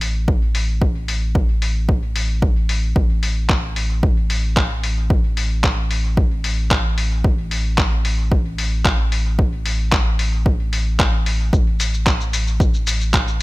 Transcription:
Already playing: A1
0.01 open hi-hat
0.28 kick
0.55 open hi-hat
0.82 kick
1.08 open hi-hat
1.35 kick
1.62 open hi-hat
1.89 kick
2.16 open hi-hat
2.42 kick
2.69 open hi-hat
2.96 A1, kick
3.23 open hi-hat
3.49 kick, clap
3.76 open hi-hat
4.03 kick
4.30 open hi-hat
4.57 kick, clap
4.84 open hi-hat
5.10 kick
5.37 open hi-hat
5.64 kick, clap
5.91 open hi-hat
6.17 kick
6.44 open hi-hat
6.71 kick, clap
6.98 open hi-hat
7.24 kick
7.51 open hi-hat
7.78 kick, clap
8.05 open hi-hat
8.32 kick
8.58 open hi-hat
8.85 kick, clap
9.12 open hi-hat
9.39 kick
9.66 open hi-hat
9.92 kick, clap
10.19 open hi-hat
10.46 kick
10.73 open hi-hat
10.99 kick, clap
11.26 open hi-hat
11.53 A1, kick, shaker
11.80 open hi-hat, shaker
11.94 shaker
12.07 kick, clap, shaker
12.20 shaker
12.33 open hi-hat, shaker
12.47 shaker
12.60 kick, shaker
12.74 shaker
12.87 open hi-hat, shaker
13.01 shaker
13.14 kick, clap, shaker
13.28 shaker

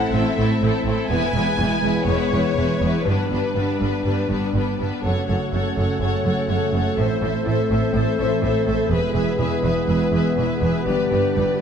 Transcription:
Already playing: A3 C4 E4 A4 F#5
0.12 A1 A2 A3 C4 E4 A4 E5
0.36 A1 A2 A3 C4 E4 A4
0.60 A1 A2 A3 C4 E4 A4
0.84 A1 A2 A3 C4 E4 A4
1.08 E1 E2 G#3 B3 B4 G#5
1.12 E4
1.33 E1 E2 G#3 B3 E4 B4
1.57 E1 E2 G#3 B3 E4
1.61 B4
1.81 E1 E2 G#3 B3 E4 B4
2.06 E1 E2 G#3 B3 E4 B4 C#5
2.31 E1 E2 G#3 B3 E4 B4
2.56 E1 E2 G#3 B3 E4 B4
2.80 E1 E2 G#3 B3 E4 B4
3.04 G1 G2 G3 B3 D4 B4
3.29 G1 G2 G3 B3 D4 B4
3.53 G1 G2 G3 B3 D4 B4
3.80 G1 G2 G3 B3 D4 B4
4.05 G1 G2 G3 B3 D4 B4
4.28 G1 G2 G3 B3 D4 B4
4.54 G1 G2 G3 B3 D4 B4
4.79 G1 G2 G3 B3 D4 B4
5.03 F#1 F#2 C#3 A3 C#4 F#4 A4 C#5 F#5
5.27 F#1 F#2 A4 C#5 F#5
5.52 F#1 F#2 A4 C#5 F#5
5.77 F#1 F#2 A4 C#5 F#5
6.00 F#1 F#2 A4 C#5 F#5
6.24 F#1 F#2 A4 C#5 F#5
6.49 F#1 F#2 A4 C#5 F#5
6.73 F#1 F#2 A4 C#5 F#5
6.96 A1 A2 E3 A4 C5 E5
7.00 C4 E4
7.21 A1 A2 A4 C5 E5
7.46 A1 A2 A4 C5 E5
7.68 A1 A2 A4 C5 E5
7.93 A1 A2 A4 C5 E5
8.18 A1 A2 A4 C5 E5
8.42 A1 A2 A4 C5 E5
8.66 A1 A2 A4 C5 E5
8.89 E1 E2 G#3 B3 G#4 B4 E5
9.14 E1 E2 G#4 B4 E5
9.39 E1 E2 G#4 B4 E5
9.63 E1 E2 G#4 B4 E5
9.87 E1 E2 G#4 B4 E5
10.12 E1 E2 G#4 B4 E5
10.36 E1 E2 G#4 B4 E5
10.60 E1 E2 G#4 B4 E5
10.85 G1 G2 D3 G3 D4 G4 B4 D5, cymbal swell
11.10 G1 G2 G4 B4 D5
11.35 G1 G2 G4 B4 D5

